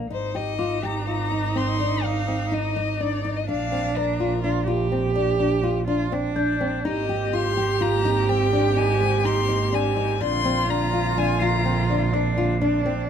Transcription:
0.10 G#1 D#4 C5
0.35 G4 D#5
0.59 F4 D6
0.83 G4 A#5
1.07 F4 A#5
1.32 D#4
1.55 C4 C6
1.80 D4
2.04 D#4 F5
2.28 C4
2.52 D#4 D#5
2.76 D#4
3.00 D4 D5
3.25 D#4
3.36 D#5
3.47 A#1 D4 F5
3.72 C4
3.96 D4 A#4
4.20 F4
4.43 D4 F4
4.67 F4 G4
4.92 C4
5.15 D4
5.40 D4
5.63 F4
5.88 D4 F4
6.12 C4 D4
6.36 D4 G6
6.61 C4
6.84 G#1 G#3 A#3 C4 D#4 G4 D#5
7.09 G4
7.33 F4 C6
7.57 G4
7.81 F4 A#5
8.05 D#4
8.29 C4 G5
8.53 D4
8.77 D#4 G#5
9.01 C4
9.25 D#4 C6
9.49 D#4
9.72 D4 G#5
9.97 D#4
10.20 A#1 D3 D4 F4 C6
10.45 C4
10.69 D4 A#5
10.93 F4
11.17 D4 G#5
11.39 F4 A#5 C7
11.65 C4
11.90 D4
12.13 D4
12.38 F4
12.61 D4
12.86 C4

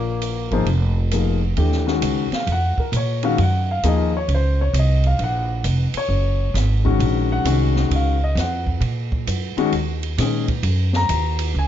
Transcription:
Already playing: A#1 A#2 A#3
0.22 hi-hat pedal, ride
0.51 G#1 F3 A#3 D#4 G#4 C5, ride
0.65 F1, ride
1.11 F3 A#3 D#4 G#4 A#4, cross-stick, hi-hat pedal, ride
1.57 D#2 E3 A3 D4 G4, ride
1.72 snare
1.86 D#3 G#3 C#4 F#4, snare
2.02 C#2, hi-hat pedal, ride
2.31 F5, muted upright bass stroke, snare, ride
2.47 F2, ride
2.52 F#5
2.77 A#4, muted upright bass stroke, kick
2.92 A#2, hi-hat pedal, ride
2.96 C#5
3.23 D#3 G#3 C#4 F#4 F5, ride
3.38 F#2, ride
3.43 F#5
3.71 F5
3.83 D#2 F3 A#3 D#4 G#4, hi-hat pedal, ride
3.88 D#5
4.17 C#5
4.28 C#2, ride
4.35 C5
4.61 C#5
4.73 C2, hi-hat pedal, ride
4.79 D#5
5.04 F5, ride
5.19 A#1, ride
5.24 F#5
5.64 F1, hi-hat pedal, ride
5.94 C#5, muted upright bass stroke, ride
6.08 F#1
6.54 G#1, snare, hi-hat pedal, ride
6.85 D#3 G#3 C#4 F#4, kick
6.99 A#1, ride
7.32 F#5
7.44 C2 D#3 G#3 C#4 F#4, hi-hat pedal, ride
7.76 snare
7.90 C#2, ride
7.95 F5
8.24 D#5
8.35 F2 F#5, snare, hi-hat pedal, ride
8.67 kick
8.80 A#2, ride
9.12 kick
9.27 F#2, hi-hat pedal, ride
9.56 D#3 G#3 C#4 F#4, muted upright bass stroke, ride
9.72 D#2, ride
10.03 ride
10.18 A#2 D#3 G#3 C#4 G#4, snare, hi-hat pedal, ride
10.48 kick, ride
10.63 F#2, ride
10.93 A#5, snare
11.09 D#2, hi-hat pedal, ride
11.39 ride
11.54 C#2
11.59 G#5

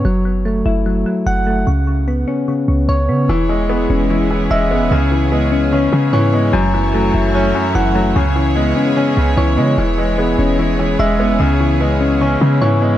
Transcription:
0.05 F#1 F#3
0.25 F#3
0.45 A3
0.66 F#1 E4
0.86 F#3
1.06 F#3
1.26 F#1 F#5
1.47 A3
1.67 C#2 C#3
1.87 C#3
2.08 B3
2.28 C#4
2.48 C#3
2.68 C#2 C#3
2.89 C#2 C#5
3.09 C#3 B3
3.29 E1 E3 B3 E4 G#4 C#5
3.49 E3 G#3
3.69 G#3 B3
3.90 E1 C#4
4.10 E3 E4
4.30 E3
4.50 E1 G#3 E5
4.71 F#1 G#3 B3
4.82 E1
4.91 C#2 C#3
5.11 C#3 E3
5.32 G#3 B3
5.52 C#4
5.72 C#3 C#4
5.93 C#3
6.13 G#2 E3 C#5
6.33 G#3 B3
6.53 F#1 F#2 F#3 A3 F#4
6.74 E3 F#3
6.94 F#3 A3
7.14 F#1 E4
7.35 F#3 C#4
7.55 F#2 F#3
7.75 F#1 E3 F#5
7.95 F#3 A3
8.15 C#2 C#3 B3 G#4
8.36 C#3 E3
8.55 G#3 B3
8.76 C#4
8.97 C#3 C#4
9.17 C#2 C#3
9.37 C#2 E3 C#5
9.57 C#3 G#3 B3
9.78 E1 E3 B3 G#4
9.98 E3 G#3
10.18 G#3 B3
10.39 E1 C#4
10.59 E3 E4
10.79 E3
10.99 E1 G#3 E5
11.20 F#1 G#3 B3
11.30 E1
11.40 C#2 C#3 E4
11.60 C#3 E3
11.80 G#3 B3
12.01 C#4
12.21 C#3 C#4
12.41 C#3
12.62 G#2 E3 C#5
12.82 G#3 B3

